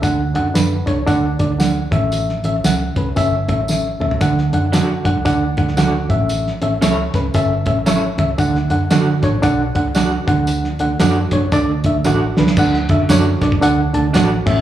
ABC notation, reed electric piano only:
X:1
M:4/4
L:1/8
Q:"Swing" 1/4=115
K:D
V:1 name="Reed electric piano"
[DAf] [DAf] [DAB] [DAc] [DAf] [DAd] [DAf] [CAe]- | [CAe] [CAe] [CAf] [CAB] [CAe] [CAe] [CAe] [CAe] | [DAf] [DAf] [DAf] [DAf] [DAf] [DAf] [DAf] [CAe]- | [CAe] [CAe] [CAe] [CAB] [CAe] [CAe] [CAe] [CAe] |
[DAf] [DAf] [DAf] [DAc] [DAf] [DAf] [DAf] [DAf]- | [DAf] [DAf] [DAf] [DAc] [DAd] [DAe] [DAf] [DAB] | [DAf] [DAe] [DAc] [DAd] [DAf] [DAa] [DAf] [CAe] |]
V:2 name="Reed electric piano" clef=bass
D,3 z4 A,,- | A,,2 z6 | D,3 z4 A,,- | A,,2 z6 |
D,3 z4 D,- | D,2 z6 | D,3 z4 A,, |]